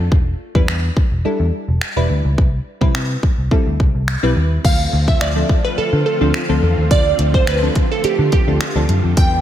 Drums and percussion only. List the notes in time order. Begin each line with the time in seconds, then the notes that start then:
0.12 kick
0.55 kick
0.68 finger snap
0.97 kick
1.81 finger snap
2.38 kick
2.81 kick
2.95 finger snap
3.23 kick
3.51 kick
3.80 kick
4.08 finger snap
4.65 kick, crash
5.08 kick
5.21 finger snap
5.49 kick
6.34 finger snap
6.91 kick, closed hi-hat
7.19 closed hi-hat
7.34 kick
7.47 finger snap, closed hi-hat
7.75 kick, closed hi-hat
8.04 closed hi-hat
8.32 kick, closed hi-hat
8.61 finger snap, closed hi-hat
8.89 closed hi-hat
9.17 kick, closed hi-hat